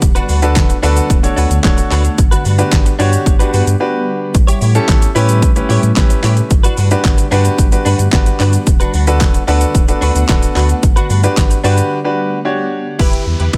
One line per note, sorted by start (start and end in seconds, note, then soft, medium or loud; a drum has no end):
0.00 0.20 D1 loud
0.00 4.31 D3 medium
0.00 2.16 A3 medium
0.00 2.16 B3 medium
0.00 2.14 F#5 medium
0.00 muted clean electric guitar stroke soft
0.00 kick loud
0.00 closed hi-hat medium
0.00 shaker medium
0.15 0.27 D4 medium
0.15 0.28 F#4 medium
0.15 0.29 B4 medium
0.15 closed hi-hat medium
0.15 shaker medium
0.29 0.57 D2 loud
0.29 0.40 D4 medium
0.29 0.40 F#4 medium
0.29 0.41 B4 medium
0.29 open hi-hat medium
0.29 shaker medium
0.42 0.75 D4 loud
0.42 0.75 F#4 medium
0.42 0.76 A4 medium
0.42 0.76 B4 loud
0.42 closed hi-hat medium
0.42 shaker medium
0.56 0.74 D1 loud
0.56 kick loud
0.56 snare loud
0.56 clap loud
0.56 closed hi-hat medium
0.56 shaker medium
0.69 muted clean electric guitar stroke medium
0.69 closed hi-hat medium
0.69 shaker medium
0.83 1.01 D2 loud
0.83 0.97 D4 medium
0.83 1.16 D4 loud
0.83 1.16 F#4 loud
0.83 0.96 F#4 loud
0.83 1.16 A4 loud
0.83 1.16 B4 loud
0.83 0.95 B4 loud
0.83 open hi-hat medium
0.83 shaker medium
0.96 muted clean electric guitar stroke soft
0.96 closed hi-hat medium
0.96 shaker medium
1.10 1.28 D1 loud
1.10 kick loud
1.10 closed hi-hat medium
1.10 shaker medium
1.23 1.56 D4 medium
1.23 1.56 F#4 medium
1.23 1.57 A4 medium
1.23 1.57 C#5 loud
1.23 muted clean electric guitar stroke medium
1.23 closed hi-hat medium
1.23 shaker medium
1.36 1.46 D2 loud
1.36 1.51 D4 medium
1.36 1.50 F#4 loud
1.36 1.49 B4 loud
1.36 open hi-hat medium
1.36 shaker medium
1.50 1.59 D2 loud
1.50 muted clean electric guitar stroke medium
1.50 closed hi-hat medium
1.50 shaker medium
1.64 1.82 D1 loud
1.64 2.18 D4 medium
1.64 2.18 F#4 medium
1.64 2.18 A4 medium
1.64 2.18 C#5 loud
1.64 muted clean electric guitar stroke soft
1.64 kick loud
1.64 snare loud
1.64 clap loud
1.64 closed hi-hat medium
1.64 shaker medium
1.77 muted clean electric guitar stroke medium
1.77 closed hi-hat medium
1.77 shaker medium
1.91 2.09 D2 loud
1.91 2.05 D4 medium
1.91 2.04 F#4 medium
1.91 2.03 B4 loud
1.91 clap medium
1.91 open hi-hat medium
1.91 shaker soft
2.05 closed hi-hat medium
2.05 shaker medium
2.18 2.36 G1 loud
2.18 8.63 G3 medium
2.18 4.32 B3 medium
2.18 4.32 F#5 medium
2.18 muted clean electric guitar stroke soft
2.18 kick loud
2.18 closed hi-hat medium
2.18 shaker medium
2.31 2.44 D4 medium
2.31 2.45 F#4 medium
2.31 2.45 B4 medium
2.31 closed hi-hat medium
2.31 shaker medium
2.45 2.63 G2 loud
2.45 2.56 D4 medium
2.45 2.56 F#4 medium
2.45 2.57 B4 medium
2.45 open hi-hat medium
2.45 shaker medium
2.58 2.92 D4 loud
2.58 2.92 F#4 medium
2.58 2.92 G4 medium
2.58 2.92 B4 loud
2.58 closed hi-hat medium
2.58 shaker medium
2.72 2.90 G1 loud
2.72 kick loud
2.72 snare loud
2.72 clap loud
2.72 closed hi-hat medium
2.72 shaker medium
2.85 muted clean electric guitar stroke medium
2.85 closed hi-hat medium
2.85 shaker medium
2.99 3.17 G2 loud
2.99 3.13 D4 loud
2.99 3.32 D4 loud
2.99 3.32 F#4 medium
2.99 3.13 F#4 loud
2.99 3.32 G4 loud
2.99 3.11 B4 loud
2.99 3.32 C#5 loud
2.99 open hi-hat medium
2.99 shaker medium
3.13 muted clean electric guitar stroke medium
3.13 closed hi-hat medium
3.13 shaker medium
3.26 3.44 G1 loud
3.26 muted clean electric guitar stroke soft
3.26 kick loud
3.26 closed hi-hat medium
3.26 shaker medium
3.39 3.73 D4 medium
3.39 3.51 D4 medium
3.39 3.73 F#4 medium
3.39 3.51 F#4 medium
3.39 3.73 G4 medium
3.39 3.50 B4 medium
3.39 3.73 B4 loud
3.39 closed hi-hat medium
3.39 shaker medium
3.53 3.62 G2 loud
3.53 3.67 D4 medium
3.53 3.66 F#4 loud
3.53 3.65 B4 loud
3.53 open hi-hat medium
3.53 shaker medium
3.66 3.76 G2 loud
3.66 muted clean electric guitar stroke medium
3.66 closed hi-hat medium
3.66 shaker medium
3.80 4.34 D4 medium
3.80 4.34 F#4 medium
3.80 4.34 G4 medium
3.80 4.35 B4 loud
4.34 4.52 A1 loud
4.34 6.48 C#3 medium
4.34 6.48 A3 medium
4.34 6.48 E4 medium
4.34 muted clean electric guitar stroke soft
4.34 kick loud
4.34 closed hi-hat medium
4.34 shaker medium
4.47 4.60 E4 medium
4.47 4.61 G4 medium
4.47 4.62 C#5 medium
4.47 closed hi-hat medium
4.47 shaker medium
4.61 4.79 A2 loud
4.61 4.72 E4 medium
4.61 4.73 G4 medium
4.61 4.73 C#5 medium
4.61 open hi-hat medium
4.61 shaker medium
4.75 5.08 C#4 loud
4.75 5.08 E4 medium
4.75 5.08 G4 medium
4.75 5.08 A4 loud
4.75 muted clean electric guitar stroke soft
4.75 closed hi-hat soft
4.75 shaker medium
4.88 5.06 A1 loud
4.88 kick loud
4.88 snare loud
4.88 clap loud
4.88 closed hi-hat medium
4.88 shaker medium
5.02 muted clean electric guitar stroke soft
5.02 closed hi-hat medium
5.02 shaker medium
5.15 5.44 A2 loud
5.15 5.48 C#4 loud
5.15 5.29 E4 medium
5.15 5.48 E4 medium
5.15 5.49 G4 medium
5.15 5.29 G4 medium
5.15 5.49 B4 loud
5.15 5.28 C#5 loud
5.15 open hi-hat medium
5.15 shaker medium
5.29 muted clean electric guitar stroke soft
5.29 closed hi-hat medium
5.29 shaker medium
5.42 5.60 A1 loud
5.42 kick loud
5.42 closed hi-hat medium
5.42 shaker medium
5.56 5.89 C#4 medium
5.56 5.89 E4 medium
5.56 5.89 G4 medium
5.56 5.89 B4 loud
5.56 muted clean electric guitar stroke soft
5.56 closed hi-hat medium
5.56 shaker medium
5.69 5.78 A2 loud
5.69 5.83 E4 medium
5.69 5.83 G4 loud
5.69 5.82 C#5 loud
5.69 open hi-hat medium
5.69 shaker medium
5.83 5.92 A2 loud
5.83 muted clean electric guitar stroke medium
5.83 closed hi-hat medium
5.83 shaker medium
5.96 6.14 A1 loud
5.96 6.51 C#4 medium
5.96 6.51 E4 medium
5.96 6.51 G4 medium
5.96 6.51 B4 loud
5.96 muted clean electric guitar stroke soft
5.96 kick loud
5.96 snare loud
5.96 clap loud
5.96 closed hi-hat medium
5.96 shaker medium
6.10 muted clean electric guitar stroke medium
6.10 closed hi-hat medium
6.10 shaker medium
6.23 6.41 A2 loud
6.23 6.37 E4 loud
6.23 6.37 G4 loud
6.23 6.36 C#5 loud
6.23 clap medium
6.23 open hi-hat medium
6.23 shaker medium
6.37 muted clean electric guitar stroke soft
6.37 closed hi-hat medium
6.37 shaker medium
6.50 6.68 G1 loud
6.50 12.95 D3 medium
6.50 12.95 B3 medium
6.50 12.95 F#5 medium
6.50 muted clean electric guitar stroke soft
6.50 kick loud
6.50 closed hi-hat medium
6.50 shaker medium
6.63 6.76 D4 medium
6.63 6.77 F#4 medium
6.63 6.78 B4 medium
6.63 closed hi-hat medium
6.63 shaker medium
6.77 6.95 G2 loud
6.77 6.88 D4 medium
6.77 6.89 F#4 medium
6.77 6.89 B4 medium
6.77 open hi-hat medium
6.77 shaker medium
6.91 7.24 D4 loud
6.91 7.24 F#4 medium
6.91 7.24 G4 medium
6.91 7.24 B4 loud
6.91 muted clean electric guitar stroke soft
6.91 closed hi-hat medium
6.91 shaker medium
7.05 7.22 G1 loud
7.05 kick loud
7.05 snare loud
7.05 clap loud
7.05 closed hi-hat medium
7.05 shaker medium
7.18 muted clean electric guitar stroke medium
7.18 closed hi-hat medium
7.18 shaker medium
7.31 7.49 G2 loud
7.31 7.45 D4 loud
7.31 7.65 D4 loud
7.31 7.65 F#4 loud
7.31 7.45 F#4 loud
7.31 7.65 G4 loud
7.31 7.65 B4 loud
7.31 7.44 B4 loud
7.31 open hi-hat medium
7.31 shaker medium
7.45 muted clean electric guitar stroke soft
7.45 closed hi-hat medium
7.45 shaker medium
7.58 7.76 G1 loud
7.58 kick loud
7.58 closed hi-hat medium
7.58 shaker medium
7.72 8.05 D4 medium
7.72 8.05 F#4 medium
7.72 8.05 G4 medium
7.72 8.05 B4 loud
7.72 muted clean electric guitar stroke soft
7.72 closed hi-hat medium
7.72 shaker medium
7.85 7.95 G2 loud
7.85 7.99 D4 medium
7.85 7.99 F#4 loud
7.85 7.98 B4 loud
7.85 open hi-hat medium
7.85 shaker medium
7.99 8.08 G2 loud
7.99 muted clean electric guitar stroke medium
7.99 closed hi-hat medium
7.99 shaker medium
8.12 8.30 G1 loud
8.12 8.67 D4 loud
8.12 8.67 F#4 medium
8.12 8.67 G4 medium
8.12 8.67 B4 loud
8.12 muted clean electric guitar stroke soft
8.12 kick loud
8.12 snare loud
8.12 clap loud
8.12 closed hi-hat medium
8.12 shaker medium
8.26 muted clean electric guitar stroke soft
8.26 closed hi-hat medium
8.26 shaker medium
8.39 8.57 G2 loud
8.39 8.54 D4 medium
8.39 8.53 F#4 loud
8.39 8.52 B4 loud
8.39 clap medium
8.39 open hi-hat medium
8.39 shaker soft
8.53 muted clean electric guitar stroke soft
8.53 closed hi-hat medium
8.53 shaker medium
8.67 8.84 D1 loud
8.67 10.81 A3 medium
8.67 muted clean electric guitar stroke soft
8.67 kick loud
8.67 closed hi-hat medium
8.67 shaker medium
8.80 8.92 D4 medium
8.80 8.93 F#4 medium
8.80 8.94 B4 medium
8.80 closed hi-hat medium
8.80 shaker medium
8.94 9.22 D2 loud
8.94 9.05 D4 medium
8.94 9.05 F#4 medium
8.94 9.06 B4 medium
8.94 open hi-hat medium
8.94 shaker medium
9.07 9.40 D4 loud
9.07 9.40 F#4 medium
9.07 9.40 A4 medium
9.07 9.40 B4 loud
9.07 muted clean electric guitar stroke soft
9.07 closed hi-hat medium
9.07 shaker medium
9.21 9.38 D1 loud
9.21 kick loud
9.21 snare loud
9.21 clap loud
9.21 closed hi-hat medium
9.21 shaker medium
9.34 muted clean electric guitar stroke medium
9.34 closed hi-hat medium
9.34 shaker medium
9.47 9.65 D2 loud
9.47 9.62 D4 medium
9.47 9.81 D4 loud
9.47 9.81 F#4 loud
9.47 9.61 F#4 medium
9.47 9.81 A4 medium
9.47 9.81 B4 loud
9.47 9.60 B4 loud
9.47 open hi-hat medium
9.47 shaker medium
9.61 muted clean electric guitar stroke soft
9.61 closed hi-hat medium
9.61 shaker medium
9.75 9.92 D1 loud
9.75 muted clean electric guitar stroke soft
9.75 kick loud
9.75 closed hi-hat medium
9.75 shaker medium
9.88 10.21 D4 medium
9.88 10.21 F#4 medium
9.88 10.21 A4 medium
9.88 10.21 B4 loud
9.88 muted clean electric guitar stroke soft
9.88 closed hi-hat medium
9.88 shaker medium
10.01 10.11 D2 loud
10.01 10.16 D4 loud
10.01 10.15 F#4 loud
10.01 10.14 B4 loud
10.01 open hi-hat medium
10.01 shaker medium
10.15 10.24 D2 loud
10.15 10.27 D4 medium
10.15 10.27 F#4 medium
10.15 10.26 B4 medium
10.15 closed hi-hat medium
10.15 shaker medium
10.29 10.47 D1 loud
10.29 10.83 D4 medium
10.29 10.83 F#4 medium
10.29 10.83 A4 medium
10.29 10.83 B4 loud
10.29 kick loud
10.29 snare loud
10.29 clap loud
10.29 closed hi-hat medium
10.29 shaker medium
10.42 muted clean electric guitar stroke medium
10.42 closed hi-hat medium
10.42 shaker medium
10.55 10.74 D2 loud
10.55 10.70 D4 medium
10.55 10.69 F#4 medium
10.55 10.68 B4 medium
10.55 clap medium
10.55 open hi-hat medium
10.55 shaker soft
10.69 muted clean electric guitar stroke soft
10.69 closed hi-hat soft
10.69 shaker medium
10.82 11.01 G1 loud
10.82 12.97 G3 medium
10.82 muted clean electric guitar stroke soft
10.82 kick loud
10.82 closed hi-hat medium
10.82 shaker medium
10.96 11.08 D4 medium
10.96 11.09 F#4 medium
10.96 11.10 B4 loud
10.96 closed hi-hat medium
10.96 shaker medium
11.09 11.27 G2 loud
11.09 11.21 D4 medium
11.09 11.21 F#4 medium
11.09 11.22 B4 medium
11.09 open hi-hat medium
11.09 shaker medium
11.23 11.57 D4 loud
11.23 11.57 F#4 medium
11.23 11.57 G4 medium
11.23 11.57 B4 loud
11.23 muted clean electric guitar stroke medium
11.23 closed hi-hat medium
11.23 shaker medium
11.37 11.55 G1 loud
11.37 kick loud
11.37 snare loud
11.37 clap loud
11.37 closed hi-hat medium
11.37 shaker medium
11.50 muted clean electric guitar stroke soft
11.50 closed hi-hat medium
11.50 shaker medium
11.64 11.82 G2 loud
11.64 11.78 D4 loud
11.64 11.97 D4 loud
11.64 11.97 F#4 medium
11.64 11.77 F#4 loud
11.64 11.97 G4 loud
11.64 11.97 B4 loud
11.64 11.76 B4 loud
11.64 open hi-hat medium
11.64 shaker medium
11.77 muted clean electric guitar stroke medium
11.77 closed hi-hat medium
11.77 shaker medium
12.04 12.38 D4 medium
12.04 12.38 F#4 medium
12.04 12.38 G4 medium
12.04 12.38 B4 loud
12.45 12.99 D4 medium
12.45 12.99 F#4 medium
12.45 12.98 G4 medium
12.45 12.99 C#5 loud
12.99 13.17 E1 loud
12.99 13.24 E4 medium
12.99 13.43 E4 medium
12.99 13.43 G4 medium
12.99 13.24 G4 loud
12.99 13.43 B4 medium
12.99 13.25 B4 medium
12.99 kick loud
12.99 closed hi-hat medium
12.99 downlifter medium
13.13 closed hi-hat medium
13.26 13.35 E2 medium
13.26 muted clean electric guitar stroke soft
13.39 13.49 E2 loud
13.39 13.51 E4 soft
13.39 13.51 G4 medium
13.39 13.51 B4 medium
13.39 closed hi-hat soft
13.53 13.57 E1 medium
13.53 13.57 E4 medium
13.53 13.57 G4 medium
13.53 13.57 B4 medium
13.53 finger snap loud
13.53 muted clean electric guitar stroke soft
13.53 kick loud
13.53 closed hi-hat medium